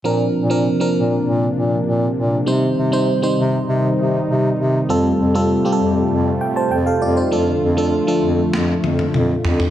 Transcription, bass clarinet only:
\new Staff \with { instrumentName = "Bass clarinet" } { \clef bass \time 4/4 \key bes \major \tempo 4 = 99 bes,8 bes,8. r16 bes,8 bes,8 bes,8 bes,8 bes,8 | c8 c8. r16 c8 c8 c8 c8 c8 | f,8 f,8. r16 f,8 f,8 r8 f,8 f,8 | f,8 f,8. r16 f,8 f,8 f,8 f,8 f,8 | }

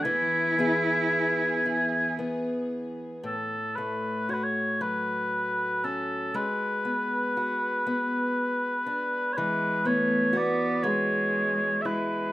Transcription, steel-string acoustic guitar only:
\new Staff \with { instrumentName = "Steel-string acoustic guitar" } { \time 6/8 \key a \major \tempo 4. = 39 e8 <b e' gis'>4 e'8 b4 | a,8 a8 fis'8 fis4 cis'8 | gis8 b8 fis'8 b4 d'8 | e8 b8 fis'8 gis4 e'8 | }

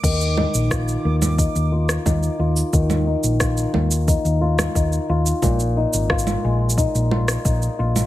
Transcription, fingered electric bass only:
\new Staff \with { instrumentName = "Fingered electric bass" } { \clef bass \time 4/4 \key ees \major \tempo 4 = 89 ees,8 r16 bes,,8 r16 ees,8 r16 ees,8 r16 ees,16 r16 ees,16 r16 | ees,8 r16 bes,,8 r16 ees,8 r16 ees,8 r16 ees,16 r16 ees,16 r16 | bes,,8 r16 aes,,8 r16 bes,,8 r16 bes,,8 r16 bes,,16 r16 bes,,16 r16 | }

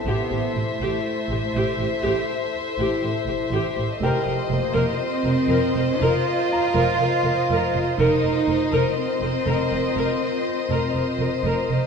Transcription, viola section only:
\new Staff \with { instrumentName = "Viola section" } { \time 4/4 \key f \minor \tempo 4 = 61 g'16 g'16 g'16 g'16 r16 g'16 g'16 g'16 g'16 r8 g'16 g'16 g'16 g'16 g'16 | bes'16 bes'16 bes'16 bes'16 r16 bes'16 bes'16 bes'16 bes'16 r8 bes'16 bes'16 bes'16 bes'16 bes'16 | bes'16 bes'16 bes'16 bes'16 r16 bes'16 bes'16 bes'16 bes'16 r8 bes'16 bes'16 bes'16 bes'16 bes'16 | }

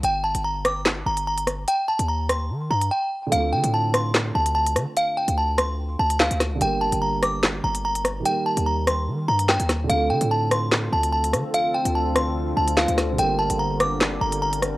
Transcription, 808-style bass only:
\new Staff \with { instrumentName = "808-style bass" } { \clef bass \time 4/4 \key d \phrygian \tempo 4 = 146 g,,8. g,,4.~ g,,16 g,,4. | r8. ees,4~ ees,16 ees8 g,8 r4 | d,8 d16 a,4.~ a,16 d,4 d16 r16 | r8. d,4.~ d,16 d,8. d,8 c,16 |
g,,8. g,,4.~ g,,16 g,,4. | r8. ees,4~ ees,16 ees8 g,8. ees,8. | d,8 d16 a,4.~ a,16 d,4 d16 r16 | r8. d,4.~ d,16 d,8. d,8 c,16 |
g,,8. g,,4.~ g,,16 g,,4. | }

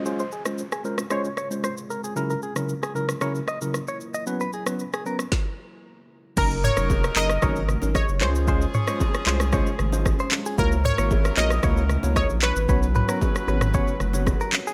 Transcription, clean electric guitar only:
\new Staff \with { instrumentName = "Clean electric guitar" } { \time 4/4 \key ges \lydian \tempo 4 = 114 r16 c''16 aes'16 r8 aes'16 bes'16 r16 c''16 r16 des''16 r16 c''16 r16 bes'16 aes'16 | r16 bes'16 aes'16 r8 aes'16 bes'16 r16 des''16 r16 ees''16 r8 des''16 r16 ees''16 | r16 ces''16 aes'16 r8 aes'16 bes'16 r2 r16 | bes'16 r16 des''16 des''16 r8 bes'16 r16 des''8 r8 ees''16 r16 des''16 r16 |
c''16 r16 des''16 des''16 r8 c''16 r16 des''8 r8. c''16 r16 aes'16 | bes'16 r16 des''16 des''16 r8 bes'16 r16 des''8 r8 ees''16 r16 des''16 r16 | ces''16 r16 ces''16 bes'16 r8 ces''16 r16 des''8 r8. bes'16 r16 aes'16 | }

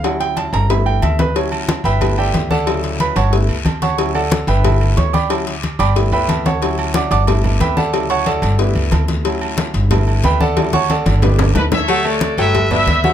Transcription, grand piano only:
<<
  \new Staff \with { instrumentName = "Grand piano" } { \time 4/4 \key g \lydian \tempo 4 = 182 fis''8 g''8 a''8 bes''8 b''8 g''8 e''8 b'8 | cis''8 r4 <b' e'' g'' b''>4 <g' d'' e'' g''>4 <a' d'' fis'' a''>8~ | <a' d'' fis'' a''>4 <b' b''>8 <cis'' fis'' a'' cis'''>8 r4. <cis'' fis'' a'' cis'''>8~ | <cis'' fis'' a'' cis'''>8 <a' d'' fis'' a''>4 <b' e'' g'' b''>4. <cis'' cis'''>8 <d'' g'' b'' d'''>8 |
r4. <d'' g'' b'' d'''>4 <b' e'' g'' b''>4 <cis'' fis'' a'' cis'''>8~ | <cis'' fis'' a'' cis'''>4 <d'' fis'' a'' d'''>8 <d'' fis'' a'' d'''>8 r4 <b' e'' g'' b''>8 <a' d'' fis'' a''>8~ | <a' d'' fis'' a''>8 <cis'' fis'' a'' cis'''>8 <a' d'' fis'' a''>4 <d' g' b' d''>4 r4 | r2. <b' e'' g'' b''>8 <a' d'' fis'' a''>8~ |
<a' d'' fis'' a''>8 <cis'' fis'' a'' cis'''>8 <a' d'' fis'' a''>4 <d' g' b' d''>4 r4 | <fis fis' fis''>8 <a a'>4 <a a' g''>4 <b b' d''>4 <fis fis' fis''>8 | }
  \new Staff \with { instrumentName = "Grand piano" } { \time 4/4 \key g \lydian <fis cis' e'>2 <a b e'>4. r8 | <fis cis' e'>2 <a b e'>4. r8 | <cis fis e'>2 <a b e'>8 r4. | <fis cis' e'>8 r4. <a b e'>4. r8 |
<fis cis' e'>8 r4. <a b e'>4. r8 | <fis cis' e'>2 <a b e'>4. r8 | <cis fis e'>2 <a b e'>2 | <fis cis' e'>2 <a b e'>2 |
<fis cis' e'>8 r4. <a b e'>4. r8 | r1 | }
>>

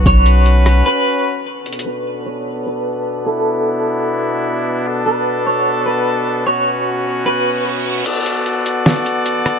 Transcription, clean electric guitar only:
\new Staff \with { instrumentName = "Clean electric guitar" } { \time 4/4 \key b \minor \tempo 4 = 150 cis''2 b'4 r4 | r8 b'4 cis''4 b'4. | a'2. r4 | r8 b'4 cis''4 b'4. |
cis''2 b'4 r4 | r1 | }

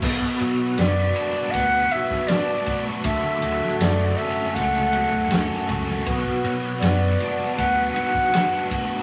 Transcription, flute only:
\new Staff \with { instrumentName = "Flute" } { \time 4/4 \key b \minor \tempo 4 = 79 r4 d''4 fis''8 e''8 d''8. r16 | e''4 d''8 e''8 fis''4. r8 | r4 d''4 fis''8 fis''4 r8 | }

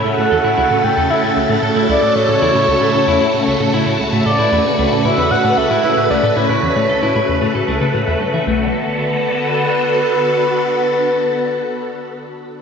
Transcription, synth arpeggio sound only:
\new Staff \with { instrumentName = "Synth arpeggio sound" } { \clef bass \time 4/4 \key b \minor \tempo 4 = 114 a,16 a,16 e,16 a,16 cis,16 a,16 a,16 e,16 a,16 a,16 cis,16 a,16 a,16 a,16 cis,16 a,16 | a,16 a,16 e,16 a,16 cis,16 a,16 a,16 e,16 a,16 a,16 cis,16 a,16 a,16 a,16 cis,16 a,16 | a,16 a,16 e,16 a,16 cis,16 a,16 a,16 e,16 a,16 a,16 cis,16 a,16 a,16 a,16 cis,16 a,16 | a,16 a,16 e,16 a,16 cis,16 a,16 a,16 e,16 a,16 a,16 cis,16 cis16 a,16 e,16 g,16 e16 |
b,,8 r2. r8 | r1 | }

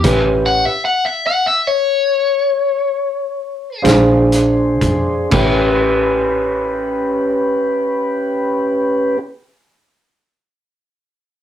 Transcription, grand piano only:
\new Staff \with { instrumentName = "Grand piano" } { \time 12/8 \key a \mixolydian \tempo 4. = 39 <cis' e' g' b'>4 r2. r8 <d' f' aes' c''>4. | <cis' e' g' b'>1. | }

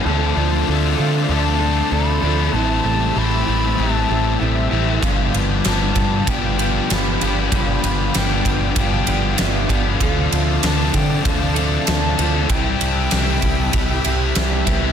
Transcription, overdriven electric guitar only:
\new Staff \with { instrumentName = "Overdriven electric guitar" } { \time 4/4 \key g \mixolydian \tempo 4 = 96 <d f a d'>4 <d f a d'>4 <d f a d'>8 <f a d'>4 <f a d'>8 | <a, e a c' e'>4 <e a c' e'>4 <a, e a c' e'>8 <a c' e'>4 <a c' e'>8 | <g, d f b d'>4 <d f b d'>4 <g, d f b d'>8 <f b d'>4 <f b d'>8 | <g, d f b d'>4 <d f b d'>4 <g, d f b d'>8 <f b d'>4 <f b d'>8 |
<d f a d'>4 <d f a d'>4 <d f a d'>8 <f a d'>4 <f a d'>8 | <c g c' e'>4 <c g c' e'>4 <c g c' e'>8 <g c' e'>4 <g c' e'>8 | }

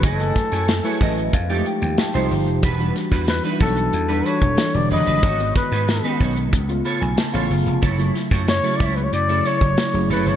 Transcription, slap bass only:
\new Staff \with { instrumentName = "Slap bass" } { \clef bass \time 4/4 \key fis \phrygian \tempo 4 = 92 fis,,8 r16 fis,8 r16 a,,8 f,8 r16 ees,16 r16 c,16 g,,16 f,,16 | e,,8 r16 e,8 r16 b,,8 e,8 r16 e,,16 r16 e,,16 e,,16 fis,,16 | gis,,8 r16 gis,8 r16 b,,8 cis,8 r16 b,,16 r16 a,,16 fis,,16 eis,,16 | fis,,8 r16 fis,8 r16 cis,8 fis,8 r16 fis,,16 r16 fis,,16 fis,,16 g,,16 | }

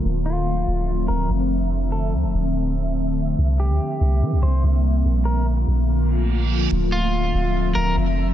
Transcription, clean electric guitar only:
\new Staff \with { instrumentName = "Clean electric guitar" } { \time 4/4 \key d \minor \tempo 4 = 144 r8 f'2 bes'8 r4 | r8 a'8 r2. | r8 g'2 c''8 r4 | r8 bes'8 r2. |
r8 f'2 bes'8 r4 | }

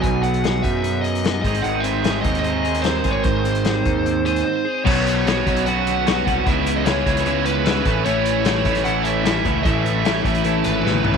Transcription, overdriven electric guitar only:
\new Staff \with { instrumentName = "Overdriven electric guitar" } { \time 4/4 \key b \mixolydian \tempo 4 = 150 <b, fis b dis' fis'>2.~ <b, fis b dis' fis'>8 <gis, dis gis bis dis' gis'>8~ | <gis, dis gis bis dis' gis'>1~ | <gis, dis gis bis dis' gis'>2.~ <gis, dis gis bis dis' gis'>8 r8 | <b, fis b cis' fis'>4 <b, fis b cis' fis'>8 <b, fis b cis' fis'>8 <b, fis b cis' fis'>4 <b, fis b cis' fis'>8 <b, fis b cis' fis'>8 |
<cis e gis cis' e'>4 <cis e gis cis' e'>8 <cis e gis cis' e'>8 <cis e gis cis' e'>4 <cis e gis cis' e'>8 <a, e a cis' e'>8 | <a, e a cis' e'>4 <a, e a cis' e'>8 <a, e a cis' e'>8 <a, e a cis' e'>4 <a, e a cis' e'>8 <a, e a cis' e'>8 | <a, e a cis' e'>4 <a, e a cis' e'>8 <a, e a cis' e'>8 <a, e a cis' e'>4 <a, e a cis' e'>8 <a, e a cis' e'>8 | }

